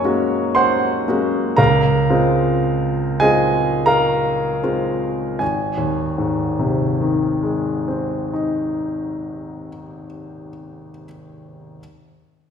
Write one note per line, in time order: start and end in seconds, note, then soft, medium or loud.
0.00 1.61 F#2 soft
0.00 0.04 G#3 soft
0.00 0.04 A#3 soft
0.00 0.05 C#4 soft
0.00 0.05 F#4 soft
0.00 0.52 C#5 medium
0.00 1.61 D#5 soft
0.00 0.52 G#5 medium
0.00 1.57 A#5 soft
0.00 0.55 C#6 medium
0.00 1.60 D#6 medium
0.04 1.04 G#3 soft
0.04 1.04 A#3 soft
0.04 1.04 C#4 soft
0.04 1.04 F#4 soft
0.55 1.54 C5 medium
0.55 1.54 F#5 medium
0.55 1.58 C6 medium
1.08 1.54 G#3 soft
1.08 1.55 A#3 soft
1.08 1.55 C#4 soft
1.08 1.55 F#4 soft
1.57 2.07 C#2 medium
1.57 3.17 A#4 medium
1.57 3.17 F5 medium
1.57 3.20 A#5 medium
2.09 3.17 G#3 soft
2.09 3.17 C4 soft
2.09 3.17 F4 soft
3.20 4.59 G#3 soft
3.20 4.59 C4 soft
3.20 4.60 F4 soft
3.20 3.82 G#4 medium
3.20 3.83 D#5 medium
3.20 3.86 G#5 medium
3.86 5.36 A#4 medium
3.86 5.36 F5 medium
3.86 5.40 A#5 medium
4.63 5.36 G#3 soft
4.63 5.36 C4 soft
4.63 5.36 F4 soft
5.39 9.69 G#1 soft
5.39 9.68 G#5 soft
5.77 10.06 D#2 soft
6.18 10.47 G#2 soft
6.59 10.88 C3 soft
7.01 11.05 D#3 soft
7.43 11.05 G#3 soft
7.88 11.05 C4 soft
8.33 11.05 D#4 soft